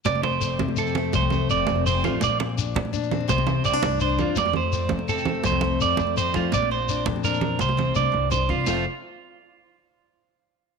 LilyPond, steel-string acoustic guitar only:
\new Staff \with { instrumentName = "Steel-string acoustic guitar" } { \time 12/8 \key f \major \tempo 4. = 111 << { r8 a8 c'4 c'8 a4 a8 c'4 c'8 a8 | r4 d'4 d'8 c'8 r8 c'8 c'16 d'8. d'8 c'8 | r8 a8 c'4 c'8 a4 a8 c'4 c'8 a8 | r8 c'8 d'4 d'8 c'8 r8 c'8 d'4 d'8 c'8 |
<f a c' a'>8 r1 r4. | } \\ { f,4. c4. f,4. c4. | bes,4. f,4. c4. g,4. | f,4. c4. f,2. | bes,4. f,4. c4. g,4. |
f,8 r1 r4. | } >> }